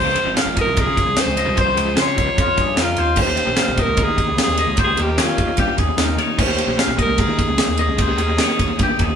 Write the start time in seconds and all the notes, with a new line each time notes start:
Already playing: C#2 C#3 F3 G#3 C#4 F4 C5
0.00 C5
0.16 ride
0.25 G#1
0.37 F5, snare, ride
0.46 G#1
0.57 D#5, kick, ride
0.61 A#4
0.67 C2
0.77 A#4, kick, ride
0.81 G#4
0.87 C#3
0.97 G#4, kick, ride
1.06 C2
1.16 snare, ride
1.21 C5
1.27 C#2
1.37 C#3 F3 G#3 D#5, ride
1.41 C#4 F4
1.47 C2
1.57 C5, kick, ride
1.77 C#2 G#4, ride
1.96 C#3 C6, snare, ride
2.02 C#5
2.17 C#2, kick, ride
2.38 F2 F4, kick, ride
2.57 G2 G#4, kick, ride
2.77 F2 A#4, snare, ride
2.82 F4
2.97 D#2 C5, ride
3.15 D#2 D#3 A#3 C#4 G4, kick, crash
3.22 C5
3.37 ride
3.47 A#1
3.56 F5, snare, ride
3.68 A#1
3.77 D#5, kick, ride
3.82 A#4
3.88 C#2
3.97 A#4, kick, ride
4.04 G#4
4.09 D#3
4.18 kick, ride
4.29 C#2
4.38 snare, ride
4.43 G#4
4.48 D#2
4.57 D#5, ride
4.68 C#2
4.76 D#3 A#3 C#4 G4 C5, kick, ride
4.84 G#4
4.97 D#2 A#4, ride
5.02 G4
5.18 D#3 C#5, snare, ride
5.23 F4
5.38 D#2, kick, ride
5.57 G2 G4, kick, ride
5.78 D#2 G#4, kick, ride
5.97 D#2 A#4, snare, ride
6.02 D#4
6.17 D#3 C#5, ride
6.37 D#2 D#3 A#3 C#4 G4, kick, crash
6.43 C5
6.58 ride
6.67 A#1
6.79 F5, snare, ride
6.88 A#1
6.98 A#4 D#5, kick, ride
7.06 C#2
7.18 G#4 A#4, kick, ride
7.28 D#3
7.39 kick, ride
7.49 C#2
7.58 snare, ride
7.68 D#2
7.77 G#4 D#5, ride
7.88 C#2
7.97 D#3 A#3 C#4 G4 C5, kick, ride
8.18 D#2 A#4, ride
8.38 D#3 C#5, snare, ride
8.59 D#2, kick, ride
8.79 G2, kick, ride
8.83 G4
8.99 D#2 G#4, kick, ride